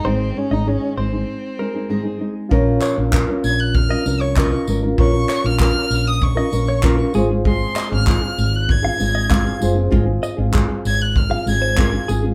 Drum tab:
TB |--------|-x-x-x-x|-x-x-x-x|-x-x-x-x|
CP |--------|-xx---x-|-xx---x-|-xx---x-|
BD |--------|o-o-o-o-|o-o-o-o-|o-o-o-o-|

TB |-x-x-x-x|
CP |--x---x-|
BD |o-o-o-o-|